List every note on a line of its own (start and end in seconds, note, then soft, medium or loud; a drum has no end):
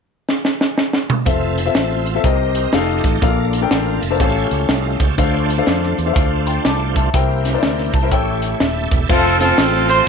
0.29 snare medium
0.45 snare medium
0.61 snare medium
0.78 snare medium
0.93 snare medium
1.10 mid tom loud
1.25 1.68 F1 loud
1.25 2.22 C4 medium
1.25 1.58 C4 medium
1.25 2.22 F4 medium
1.25 1.58 F4 medium
1.25 2.22 A4 medium
1.25 1.59 A4 medium
1.25 2.22 E5 medium
1.25 1.59 E5 medium
1.25 kick loud
1.25 closed hi-hat medium
1.58 closed hi-hat medium
1.66 2.03 C4 medium
1.66 2.04 F4 medium
1.66 2.04 A4 medium
1.66 2.04 E5 medium
1.75 2.17 A1 medium
1.75 snare loud
1.75 closed hi-hat medium
2.06 closed hi-hat medium
2.15 2.22 C4 medium
2.15 2.24 F4 medium
2.15 2.24 A4 medium
2.15 2.25 E5 medium
2.24 2.66 C2 medium
2.24 2.70 C3 medium
2.24 2.66 C4 medium
2.24 2.73 C4 medium
2.24 2.72 G4 medium
2.24 2.66 G4 medium
2.24 2.73 A#4 medium
2.24 2.66 A#4 medium
2.24 2.72 D#5 medium
2.24 2.66 D#5 medium
2.24 kick loud
2.24 closed hi-hat medium
2.55 closed hi-hat medium
2.73 3.00 F1 medium
2.73 3.22 A3 medium
2.73 3.15 D#4 medium
2.73 3.20 F4 medium
2.73 3.22 G4 medium
2.73 3.15 G4 medium
2.73 3.15 A4 medium
2.73 3.22 D#5 medium
2.73 3.16 F5 loud
2.73 snare medium
2.73 closed hi-hat medium
3.04 3.20 A1 medium
3.04 kick loud
3.04 closed hi-hat medium
3.21 3.64 A#1 medium
3.21 3.98 A#2 medium
3.21 4.18 A#3 medium
3.21 3.54 D4 medium
3.21 4.18 F4 medium
3.21 3.54 A4 medium
3.21 3.54 A#4 medium
3.21 3.69 D5 medium
3.21 3.55 F5 medium
3.21 kick loud
3.21 closed hi-hat medium
3.53 closed hi-hat medium
3.61 3.99 D4 medium
3.61 3.99 A4 medium
3.61 4.00 A#4 medium
3.61 4.00 G5 medium
3.70 3.97 A1 medium
3.70 4.00 C5 medium
3.70 4.00 F5 medium
3.70 snare loud
3.70 closed hi-hat medium
4.00 4.18 F1 medium
4.00 4.48 E5 medium
4.00 4.48 A5 medium
4.00 closed hi-hat medium
4.10 4.20 D4 medium
4.10 4.19 A4 medium
4.10 4.20 A#4 medium
4.10 4.20 C5 medium
4.19 4.46 A1 medium
4.19 4.96 A2 medium
4.19 5.16 A3 medium
4.19 5.03 C#4 medium
4.19 5.16 F4 medium
4.19 5.15 G4 medium
4.19 5.04 G4 medium
4.19 5.04 A4 medium
4.19 4.27 C5 medium
4.19 5.04 F5 medium
4.19 kick loud
4.19 closed hi-hat medium
4.25 4.50 C#5 medium
4.51 4.67 C#2 medium
4.51 4.68 C#5 medium
4.51 closed hi-hat medium
4.69 4.95 C2 medium
4.69 4.99 A4 medium
4.69 4.98 D#5 medium
4.69 4.98 F5 medium
4.69 snare medium
4.69 closed hi-hat medium
4.99 5.15 C#2 medium
4.99 5.47 C#5 soft
4.99 5.46 G5 medium
4.99 5.16 A5 medium
4.99 kick medium
4.99 closed hi-hat medium
5.17 5.60 D2 medium
5.17 5.94 D3 medium
5.17 7.10 A3 medium
5.17 5.50 D4 medium
5.17 7.10 D4 medium
5.17 7.10 F4 medium
5.17 5.50 A4 medium
5.17 7.10 C5 medium
5.17 5.50 C5 medium
5.17 5.50 F5 medium
5.17 kick medium
5.17 closed hi-hat medium
5.50 closed hi-hat medium
5.57 5.95 D4 medium
5.57 5.95 A4 medium
5.57 5.95 C5 medium
5.57 5.96 F5 medium
5.67 5.93 F2 medium
5.67 snare medium
5.67 closed hi-hat medium
5.83 snare soft
5.98 6.14 E2 medium
5.98 closed hi-hat medium
6.06 6.75 D4 medium
6.06 6.75 A4 medium
6.06 6.75 C5 medium
6.06 6.12 E5 medium
6.13 6.57 D2 medium
6.13 6.50 F5 medium
6.13 kick loud
6.13 closed hi-hat medium
6.47 6.64 G5 medium
6.47 6.64 C6 medium
6.47 closed hi-hat medium
6.65 7.07 C2 medium
6.65 6.95 A5 medium
6.65 6.95 D6 medium
6.65 snare medium
6.65 closed hi-hat medium
6.96 7.43 E5 soft
6.96 7.43 A5 medium
6.96 kick medium
6.96 closed hi-hat medium
7.14 7.55 C2 medium
7.14 7.90 C3 medium
7.14 8.10 A#3 medium
7.14 7.22 D#4 soft
7.14 7.46 E4 medium
7.14 8.10 G4 medium
7.14 7.46 A#4 medium
7.14 8.10 C5 medium
7.14 7.46 C5 medium
7.14 7.46 G5 medium
7.14 kick loud
7.14 closed hi-hat medium
7.20 8.11 E4 medium
7.45 snare soft
7.45 closed hi-hat medium
7.53 7.58 D#4 medium
7.53 7.91 A#4 medium
7.53 7.91 C5 medium
7.53 7.92 D5 medium
7.59 7.94 E4 medium
7.59 snare loud
7.59 closed hi-hat medium
7.63 7.89 D2 medium
7.78 snare soft
7.93 8.12 C2 medium
7.93 8.11 A5 medium
7.93 kick medium
7.93 closed hi-hat medium
8.03 8.10 E4 medium
8.03 8.12 A#4 medium
8.03 8.12 C5 medium
8.03 8.12 E5 medium
8.12 8.53 A1 medium
8.12 8.88 A2 medium
8.12 9.08 A3 medium
8.12 8.95 E4 medium
8.12 9.08 E4 medium
8.12 9.08 G4 medium
8.12 8.95 A4 medium
8.12 8.95 C#5 medium
8.12 8.60 C#5 medium
8.12 8.96 G5 medium
8.12 kick medium
8.12 closed hi-hat medium
8.42 closed hi-hat medium
8.60 8.87 D#1 medium
8.60 8.90 E5 soft
8.60 9.06 E5 medium
8.60 8.89 A5 medium
8.60 snare medium
8.60 closed hi-hat medium
8.91 9.07 E1 medium
8.91 9.38 A4 medium
8.91 9.38 E5 medium
8.91 kick medium
8.91 closed hi-hat medium
9.09 9.51 F1 medium
9.09 10.05 A3 medium
9.09 10.05 C4 medium
9.09 9.84 C4 medium
9.09 9.39 C4 medium
9.09 10.05 F4 medium
9.09 9.84 F4 medium
9.09 9.39 F4 medium
9.09 9.38 A4 loud
9.09 9.84 A4 medium
9.09 10.05 C5 medium
9.09 9.18 E5 medium
9.09 kick loud
9.09 crash medium
9.09 tambourine medium
9.17 9.88 F5 medium
9.40 10.03 C4 medium
9.40 10.03 F4 medium
9.40 9.86 A4 medium
9.40 snare soft
9.40 closed hi-hat medium
9.40 tambourine soft
9.58 10.00 A1 medium
9.58 snare loud
9.58 clap loud
9.58 closed hi-hat medium
9.58 tambourine loud
9.73 snare soft
9.89 10.06 C5 loud
9.89 clap medium
9.89 closed hi-hat medium
9.89 tambourine medium